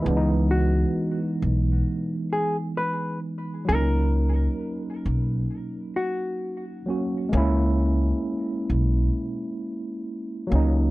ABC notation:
X:1
M:4/4
L:1/16
Q:"Swing 16ths" 1/4=66
K:C#dor
V:1 name="Hollow-body jazz guitar"
z2 F3 z4 z G z B2 z2 | A4- A z4 z F3 z3 | z16 |]
V:2 name="Tine electric piano"
[E,G,B,=D^D]16 | [F,A,CD]12- [F,A,CD]2 [F,A,CF]2 | [G,A,CE]12- [G,A,CE]2 [F,A,CD]2 |]
V:3 name="Upright bass" clef=bass
C,,4 z2 B,,,2 z8 | C,,4 z2 B,,,2 z8 | C,,4 z2 B,,,2 z6 C,,2 |]